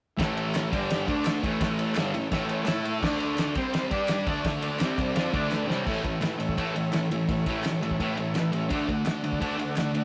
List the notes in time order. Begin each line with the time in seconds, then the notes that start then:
0.17 A2 E3 A3 E4 A4 C#5, kick, ride
0.21 snare
0.36 E4 A4 C#5, ride
0.53 E4 A4 C#5, snare, clap, ride
0.71 G2 D3 G3 D4 G4, kick, ride
0.76 D5
0.90 snare, ride
1.07 D3 A3 D4 A4 D5, kick, ride
1.25 snare, clap, ride
1.42 A2 E3 A3 E4 A4 C#5, kick, ride
1.61 kick, snare, ride
1.78 E4 A4 C#5, ride
1.94 G2 D3 G3 E4 A4 C#5, snare, clap, ride
2.12 A2 E3 E4 A4 C#5, ride
2.31 A2 E3 A3 E4 A4 C#5, kick, snare, ride
2.49 E4 A4 C#5, ride
2.64 A3 E4 A4 C#5, snare, clap, ride
2.82 E4 A4 E5, ride
3.00 D3 A3 D4 A4 D5, kick, crash
3.04 snare
3.20 D4 A4 D5, ride
3.37 D4 A4 D5, snare, clap, ride
3.55 C3 G3 C4 G4 C5, kick, ride
3.74 snare, ride
3.90 G3 D4 G4 D5, kick, ride
4.08 snare, clap, ride
4.26 D3 A3 D4 A4 D5, kick, ride
4.45 kick, snare, ride
4.62 D4 A4 D5, clap, ride
4.79 C3 G3 C4 D4 A4 D5, snare, clap, ride
4.95 C3 D4 A4 D5, kick, ride
5.00 G3 C4
5.14 F3 C4 D4 F4 A4 D5, snare, ride
5.33 D3 A3 D4 A4 D5, kick, ride
5.48 D4 A4 B4, clap
5.52 snare
5.67 C3 G3 C4 D4 A4 C#5, snare
5.85 A2 E3 A3 E4 A4 C#5, kick, crash
6.03 A2 E3 E4 A4 C#5, kick, ride
6.21 A2 E3 E4 A4 B4, snare, clap, ride
6.38 A2 E3 E4 A4 C#5, ride
6.49 kick
6.55 A2 E3 A3 E4 A4 C#5, kick, ride
6.72 A2 E4 A4 C#5
6.76 E3, ride
6.90 A2 E3 E4 A4 C#5, clap, ride
6.94 snare
7.09 A2 E3 E4 A4 C#5, ride
7.29 A2 E3 E4 A4 C#5, kick, ride
7.46 A2 E3 A3 E4 A4 C#5, kick, ride
7.64 A2 E3 E4 A4 C#5, snare, clap, ride
7.82 A2 E3 E4 A4 C#5, ride
7.91 kick
7.98 A2 E3 A3 E4 A4 C#5, kick, ride
8.17 A2 E3 E4 A4 C#5, ride
8.35 A2 E3 E4 A4 B4, snare, clap, ride
8.52 A2 E3 E4, ride
8.56 A4 C#5
8.69 D3 A3 D4 F#4 A4, kick, ride
8.75 D5
8.88 D3 A3, kick, ride
8.92 F#4 A4 D5
9.05 D3 A3 F#4 A4, snare, clap, ride
9.10 D5
9.24 D3 A3 F#4 A4 D5, ride
9.33 kick
9.40 D3 A3 D4 F#4 A4 D5, kick, ride
9.59 D3 A3 F#4 A4 D5, ride
9.76 D3 A3 F#4 A4 D5, snare, clap, ride
9.94 D3 A3 F#4 A4 D5, ride